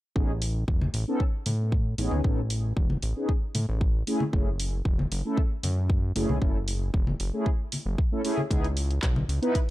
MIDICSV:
0, 0, Header, 1, 4, 480
1, 0, Start_track
1, 0, Tempo, 521739
1, 148, Time_signature, 4, 2, 24, 8
1, 8928, End_track
2, 0, Start_track
2, 0, Title_t, "Analog polysynth"
2, 0, Program_c, 0, 90
2, 142, Note_on_c, 0, 59, 72
2, 147, Note_on_c, 0, 61, 66
2, 151, Note_on_c, 0, 63, 67
2, 152, Note_on_c, 0, 68, 78
2, 290, Note_off_c, 0, 59, 0
2, 293, Note_off_c, 0, 61, 0
2, 295, Note_off_c, 0, 63, 0
2, 295, Note_off_c, 0, 68, 0
2, 989, Note_on_c, 0, 59, 91
2, 993, Note_on_c, 0, 61, 86
2, 996, Note_on_c, 0, 63, 83
2, 999, Note_on_c, 0, 69, 100
2, 1128, Note_off_c, 0, 59, 0
2, 1130, Note_off_c, 0, 61, 0
2, 1131, Note_off_c, 0, 63, 0
2, 1133, Note_off_c, 0, 69, 0
2, 1822, Note_on_c, 0, 59, 77
2, 1824, Note_on_c, 0, 61, 71
2, 1825, Note_on_c, 0, 63, 70
2, 1829, Note_on_c, 0, 68, 84
2, 2031, Note_off_c, 0, 59, 0
2, 2032, Note_off_c, 0, 61, 0
2, 2032, Note_off_c, 0, 63, 0
2, 2034, Note_off_c, 0, 68, 0
2, 2062, Note_on_c, 0, 59, 71
2, 2065, Note_on_c, 0, 61, 67
2, 2067, Note_on_c, 0, 63, 64
2, 2069, Note_on_c, 0, 69, 77
2, 2210, Note_off_c, 0, 59, 0
2, 2212, Note_off_c, 0, 61, 0
2, 2213, Note_off_c, 0, 63, 0
2, 2214, Note_off_c, 0, 69, 0
2, 2907, Note_on_c, 0, 59, 83
2, 2909, Note_on_c, 0, 61, 75
2, 2913, Note_on_c, 0, 63, 76
2, 2917, Note_on_c, 0, 68, 91
2, 3047, Note_off_c, 0, 59, 0
2, 3048, Note_off_c, 0, 61, 0
2, 3050, Note_off_c, 0, 63, 0
2, 3052, Note_off_c, 0, 68, 0
2, 3741, Note_on_c, 0, 57, 85
2, 3743, Note_on_c, 0, 61, 81
2, 3749, Note_on_c, 0, 64, 80
2, 3752, Note_on_c, 0, 68, 96
2, 3890, Note_off_c, 0, 57, 0
2, 3891, Note_off_c, 0, 61, 0
2, 3894, Note_off_c, 0, 64, 0
2, 3895, Note_off_c, 0, 68, 0
2, 3977, Note_on_c, 0, 57, 69
2, 3981, Note_on_c, 0, 61, 65
2, 3986, Note_on_c, 0, 64, 66
2, 3988, Note_on_c, 0, 68, 78
2, 4128, Note_off_c, 0, 57, 0
2, 4130, Note_off_c, 0, 61, 0
2, 4133, Note_off_c, 0, 64, 0
2, 4133, Note_off_c, 0, 68, 0
2, 4831, Note_on_c, 0, 57, 92
2, 4834, Note_on_c, 0, 61, 82
2, 4835, Note_on_c, 0, 64, 84
2, 4839, Note_on_c, 0, 69, 99
2, 4969, Note_off_c, 0, 57, 0
2, 4970, Note_off_c, 0, 61, 0
2, 4971, Note_off_c, 0, 64, 0
2, 4973, Note_off_c, 0, 69, 0
2, 5659, Note_on_c, 0, 57, 78
2, 5664, Note_on_c, 0, 61, 70
2, 5664, Note_on_c, 0, 64, 70
2, 5668, Note_on_c, 0, 68, 85
2, 5870, Note_off_c, 0, 57, 0
2, 5872, Note_off_c, 0, 61, 0
2, 5872, Note_off_c, 0, 64, 0
2, 5874, Note_off_c, 0, 68, 0
2, 5893, Note_on_c, 0, 57, 70
2, 5897, Note_on_c, 0, 61, 64
2, 5902, Note_on_c, 0, 64, 67
2, 5906, Note_on_c, 0, 69, 78
2, 6046, Note_off_c, 0, 57, 0
2, 6048, Note_off_c, 0, 61, 0
2, 6050, Note_off_c, 0, 64, 0
2, 6052, Note_off_c, 0, 69, 0
2, 6745, Note_on_c, 0, 57, 82
2, 6746, Note_on_c, 0, 61, 76
2, 6750, Note_on_c, 0, 64, 75
2, 6754, Note_on_c, 0, 68, 93
2, 6886, Note_off_c, 0, 57, 0
2, 6887, Note_off_c, 0, 61, 0
2, 6889, Note_off_c, 0, 64, 0
2, 6890, Note_off_c, 0, 68, 0
2, 7467, Note_on_c, 0, 57, 73
2, 7470, Note_on_c, 0, 61, 67
2, 7473, Note_on_c, 0, 64, 68
2, 7475, Note_on_c, 0, 69, 84
2, 7557, Note_off_c, 0, 57, 0
2, 7559, Note_off_c, 0, 61, 0
2, 7561, Note_off_c, 0, 64, 0
2, 7561, Note_off_c, 0, 69, 0
2, 7584, Note_on_c, 0, 57, 81
2, 7585, Note_on_c, 0, 61, 73
2, 7589, Note_on_c, 0, 64, 74
2, 7593, Note_on_c, 0, 68, 88
2, 7732, Note_off_c, 0, 57, 0
2, 7732, Note_off_c, 0, 61, 0
2, 7734, Note_off_c, 0, 64, 0
2, 7736, Note_off_c, 0, 68, 0
2, 7821, Note_on_c, 0, 59, 73
2, 7826, Note_on_c, 0, 63, 66
2, 7827, Note_on_c, 0, 64, 65
2, 7831, Note_on_c, 0, 68, 81
2, 7970, Note_off_c, 0, 59, 0
2, 7973, Note_off_c, 0, 63, 0
2, 7973, Note_off_c, 0, 64, 0
2, 7975, Note_off_c, 0, 68, 0
2, 8664, Note_on_c, 0, 59, 92
2, 8665, Note_on_c, 0, 63, 86
2, 8669, Note_on_c, 0, 64, 83
2, 8673, Note_on_c, 0, 71, 103
2, 8805, Note_off_c, 0, 59, 0
2, 8806, Note_off_c, 0, 63, 0
2, 8808, Note_off_c, 0, 64, 0
2, 8810, Note_off_c, 0, 71, 0
2, 8928, End_track
3, 0, Start_track
3, 0, Title_t, "Analog synth bass"
3, 0, Program_c, 1, 38
3, 147, Note_on_c, 1, 33, 95
3, 593, Note_off_c, 1, 33, 0
3, 624, Note_on_c, 1, 28, 94
3, 823, Note_off_c, 1, 28, 0
3, 864, Note_on_c, 1, 33, 89
3, 968, Note_off_c, 1, 33, 0
3, 1346, Note_on_c, 1, 45, 74
3, 1793, Note_off_c, 1, 45, 0
3, 1825, Note_on_c, 1, 33, 90
3, 1928, Note_off_c, 1, 33, 0
3, 1950, Note_on_c, 1, 37, 87
3, 2045, Note_off_c, 1, 37, 0
3, 2064, Note_on_c, 1, 33, 90
3, 2512, Note_off_c, 1, 33, 0
3, 2544, Note_on_c, 1, 28, 95
3, 2743, Note_off_c, 1, 28, 0
3, 2786, Note_on_c, 1, 33, 86
3, 2889, Note_off_c, 1, 33, 0
3, 3265, Note_on_c, 1, 45, 94
3, 3368, Note_off_c, 1, 45, 0
3, 3392, Note_on_c, 1, 33, 95
3, 3713, Note_off_c, 1, 33, 0
3, 3985, Note_on_c, 1, 30, 91
3, 4432, Note_off_c, 1, 30, 0
3, 4463, Note_on_c, 1, 28, 97
3, 4663, Note_off_c, 1, 28, 0
3, 4707, Note_on_c, 1, 30, 89
3, 4809, Note_off_c, 1, 30, 0
3, 5188, Note_on_c, 1, 42, 75
3, 5634, Note_off_c, 1, 42, 0
3, 5666, Note_on_c, 1, 30, 91
3, 5769, Note_off_c, 1, 30, 0
3, 5790, Note_on_c, 1, 35, 89
3, 5885, Note_off_c, 1, 35, 0
3, 5903, Note_on_c, 1, 30, 94
3, 6351, Note_off_c, 1, 30, 0
3, 6384, Note_on_c, 1, 28, 98
3, 6583, Note_off_c, 1, 28, 0
3, 6623, Note_on_c, 1, 30, 91
3, 6727, Note_off_c, 1, 30, 0
3, 7228, Note_on_c, 1, 30, 86
3, 7324, Note_off_c, 1, 30, 0
3, 7826, Note_on_c, 1, 37, 96
3, 8273, Note_off_c, 1, 37, 0
3, 8304, Note_on_c, 1, 35, 96
3, 8503, Note_off_c, 1, 35, 0
3, 8543, Note_on_c, 1, 37, 91
3, 8647, Note_off_c, 1, 37, 0
3, 8928, End_track
4, 0, Start_track
4, 0, Title_t, "Drums"
4, 145, Note_on_c, 9, 36, 109
4, 237, Note_off_c, 9, 36, 0
4, 384, Note_on_c, 9, 46, 93
4, 476, Note_off_c, 9, 46, 0
4, 625, Note_on_c, 9, 36, 107
4, 717, Note_off_c, 9, 36, 0
4, 750, Note_on_c, 9, 63, 85
4, 842, Note_off_c, 9, 63, 0
4, 863, Note_on_c, 9, 46, 84
4, 955, Note_off_c, 9, 46, 0
4, 1104, Note_on_c, 9, 36, 108
4, 1196, Note_off_c, 9, 36, 0
4, 1342, Note_on_c, 9, 46, 97
4, 1348, Note_on_c, 9, 63, 53
4, 1434, Note_off_c, 9, 46, 0
4, 1440, Note_off_c, 9, 63, 0
4, 1584, Note_on_c, 9, 36, 109
4, 1676, Note_off_c, 9, 36, 0
4, 1824, Note_on_c, 9, 46, 82
4, 1916, Note_off_c, 9, 46, 0
4, 1944, Note_on_c, 9, 63, 78
4, 2036, Note_off_c, 9, 63, 0
4, 2064, Note_on_c, 9, 36, 114
4, 2156, Note_off_c, 9, 36, 0
4, 2301, Note_on_c, 9, 46, 95
4, 2393, Note_off_c, 9, 46, 0
4, 2544, Note_on_c, 9, 36, 115
4, 2636, Note_off_c, 9, 36, 0
4, 2666, Note_on_c, 9, 63, 77
4, 2758, Note_off_c, 9, 63, 0
4, 2783, Note_on_c, 9, 46, 89
4, 2875, Note_off_c, 9, 46, 0
4, 3024, Note_on_c, 9, 36, 110
4, 3116, Note_off_c, 9, 36, 0
4, 3262, Note_on_c, 9, 63, 57
4, 3263, Note_on_c, 9, 46, 98
4, 3354, Note_off_c, 9, 63, 0
4, 3355, Note_off_c, 9, 46, 0
4, 3505, Note_on_c, 9, 36, 112
4, 3597, Note_off_c, 9, 36, 0
4, 3746, Note_on_c, 9, 46, 85
4, 3838, Note_off_c, 9, 46, 0
4, 3867, Note_on_c, 9, 63, 87
4, 3959, Note_off_c, 9, 63, 0
4, 3985, Note_on_c, 9, 36, 113
4, 4077, Note_off_c, 9, 36, 0
4, 4228, Note_on_c, 9, 46, 98
4, 4320, Note_off_c, 9, 46, 0
4, 4464, Note_on_c, 9, 36, 115
4, 4556, Note_off_c, 9, 36, 0
4, 4592, Note_on_c, 9, 63, 87
4, 4684, Note_off_c, 9, 63, 0
4, 4707, Note_on_c, 9, 46, 91
4, 4799, Note_off_c, 9, 46, 0
4, 4944, Note_on_c, 9, 36, 114
4, 5036, Note_off_c, 9, 36, 0
4, 5181, Note_on_c, 9, 63, 60
4, 5184, Note_on_c, 9, 46, 102
4, 5273, Note_off_c, 9, 63, 0
4, 5276, Note_off_c, 9, 46, 0
4, 5424, Note_on_c, 9, 36, 116
4, 5516, Note_off_c, 9, 36, 0
4, 5665, Note_on_c, 9, 46, 87
4, 5757, Note_off_c, 9, 46, 0
4, 5788, Note_on_c, 9, 63, 85
4, 5880, Note_off_c, 9, 63, 0
4, 5903, Note_on_c, 9, 36, 115
4, 5995, Note_off_c, 9, 36, 0
4, 6143, Note_on_c, 9, 46, 97
4, 6235, Note_off_c, 9, 46, 0
4, 6383, Note_on_c, 9, 36, 115
4, 6475, Note_off_c, 9, 36, 0
4, 6506, Note_on_c, 9, 63, 79
4, 6598, Note_off_c, 9, 63, 0
4, 6622, Note_on_c, 9, 46, 87
4, 6714, Note_off_c, 9, 46, 0
4, 6863, Note_on_c, 9, 36, 108
4, 6955, Note_off_c, 9, 36, 0
4, 7103, Note_on_c, 9, 46, 100
4, 7111, Note_on_c, 9, 63, 58
4, 7195, Note_off_c, 9, 46, 0
4, 7203, Note_off_c, 9, 63, 0
4, 7345, Note_on_c, 9, 36, 117
4, 7437, Note_off_c, 9, 36, 0
4, 7586, Note_on_c, 9, 46, 86
4, 7678, Note_off_c, 9, 46, 0
4, 7704, Note_on_c, 9, 63, 83
4, 7796, Note_off_c, 9, 63, 0
4, 7825, Note_on_c, 9, 36, 109
4, 7828, Note_on_c, 9, 42, 70
4, 7917, Note_off_c, 9, 36, 0
4, 7920, Note_off_c, 9, 42, 0
4, 7953, Note_on_c, 9, 42, 33
4, 8045, Note_off_c, 9, 42, 0
4, 8066, Note_on_c, 9, 46, 91
4, 8158, Note_off_c, 9, 46, 0
4, 8193, Note_on_c, 9, 42, 47
4, 8285, Note_off_c, 9, 42, 0
4, 8303, Note_on_c, 9, 39, 107
4, 8305, Note_on_c, 9, 36, 110
4, 8307, Note_on_c, 9, 42, 70
4, 8395, Note_off_c, 9, 39, 0
4, 8397, Note_off_c, 9, 36, 0
4, 8399, Note_off_c, 9, 42, 0
4, 8429, Note_on_c, 9, 63, 84
4, 8521, Note_off_c, 9, 63, 0
4, 8549, Note_on_c, 9, 46, 84
4, 8641, Note_off_c, 9, 46, 0
4, 8672, Note_on_c, 9, 42, 47
4, 8764, Note_off_c, 9, 42, 0
4, 8785, Note_on_c, 9, 36, 109
4, 8786, Note_on_c, 9, 42, 71
4, 8877, Note_off_c, 9, 36, 0
4, 8878, Note_off_c, 9, 42, 0
4, 8928, End_track
0, 0, End_of_file